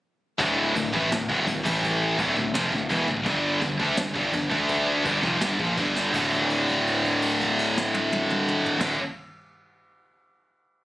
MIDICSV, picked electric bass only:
0, 0, Header, 1, 2, 480
1, 0, Start_track
1, 0, Key_signature, -1, "minor"
1, 0, Tempo, 359066
1, 513, Time_signature, 4, 2, 24, 8
1, 14494, End_track
2, 0, Start_track
2, 0, Title_t, "Picked electric bass"
2, 0, Program_c, 0, 34
2, 534, Note_on_c, 0, 26, 103
2, 969, Note_off_c, 0, 26, 0
2, 1006, Note_on_c, 0, 26, 82
2, 1221, Note_off_c, 0, 26, 0
2, 1249, Note_on_c, 0, 33, 97
2, 1463, Note_off_c, 0, 33, 0
2, 1480, Note_on_c, 0, 26, 86
2, 1698, Note_off_c, 0, 26, 0
2, 1733, Note_on_c, 0, 26, 91
2, 1944, Note_off_c, 0, 26, 0
2, 1967, Note_on_c, 0, 26, 84
2, 2181, Note_off_c, 0, 26, 0
2, 2204, Note_on_c, 0, 33, 92
2, 2865, Note_off_c, 0, 33, 0
2, 2921, Note_on_c, 0, 26, 103
2, 3137, Note_off_c, 0, 26, 0
2, 3161, Note_on_c, 0, 26, 81
2, 3377, Note_off_c, 0, 26, 0
2, 3396, Note_on_c, 0, 29, 100
2, 3615, Note_off_c, 0, 29, 0
2, 3638, Note_on_c, 0, 26, 81
2, 3856, Note_off_c, 0, 26, 0
2, 3879, Note_on_c, 0, 28, 98
2, 4096, Note_off_c, 0, 28, 0
2, 4119, Note_on_c, 0, 26, 75
2, 4336, Note_off_c, 0, 26, 0
2, 4354, Note_on_c, 0, 31, 108
2, 4798, Note_off_c, 0, 31, 0
2, 4835, Note_on_c, 0, 31, 83
2, 5055, Note_off_c, 0, 31, 0
2, 5074, Note_on_c, 0, 38, 97
2, 5295, Note_off_c, 0, 38, 0
2, 5312, Note_on_c, 0, 31, 85
2, 5534, Note_off_c, 0, 31, 0
2, 5558, Note_on_c, 0, 31, 97
2, 5777, Note_off_c, 0, 31, 0
2, 5798, Note_on_c, 0, 31, 80
2, 6018, Note_off_c, 0, 31, 0
2, 6028, Note_on_c, 0, 38, 93
2, 6701, Note_off_c, 0, 38, 0
2, 6759, Note_on_c, 0, 31, 98
2, 6980, Note_off_c, 0, 31, 0
2, 6995, Note_on_c, 0, 29, 98
2, 7218, Note_off_c, 0, 29, 0
2, 7234, Note_on_c, 0, 31, 98
2, 7458, Note_off_c, 0, 31, 0
2, 7482, Note_on_c, 0, 34, 97
2, 7703, Note_off_c, 0, 34, 0
2, 7721, Note_on_c, 0, 31, 100
2, 8167, Note_off_c, 0, 31, 0
2, 8206, Note_on_c, 0, 26, 103
2, 11646, Note_off_c, 0, 26, 0
2, 11772, Note_on_c, 0, 26, 95
2, 11964, Note_off_c, 0, 26, 0
2, 14494, End_track
0, 0, End_of_file